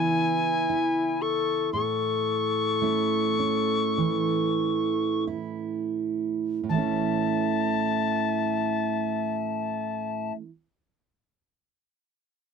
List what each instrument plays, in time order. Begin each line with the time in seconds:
Already playing: steel-string acoustic guitar C#3 E3 B3 E4, flute E4, tin whistle G#5
0.70 steel-string acoustic guitar E4
1.21 flute A4, tin whistle C#6
1.72 steel-string acoustic guitar A2, flute A4, tin whistle C#6
2.82 steel-string acoustic guitar A3 C#4 E4
3.39 steel-string acoustic guitar C#4
3.98 steel-string acoustic guitar E3
5.27 steel-string acoustic guitar E4
6.63 steel-string acoustic guitar A2
6.69 steel-string acoustic guitar E3, flute E5, tin whistle A5
6.74 steel-string acoustic guitar A3 C#4
6.82 steel-string acoustic guitar E4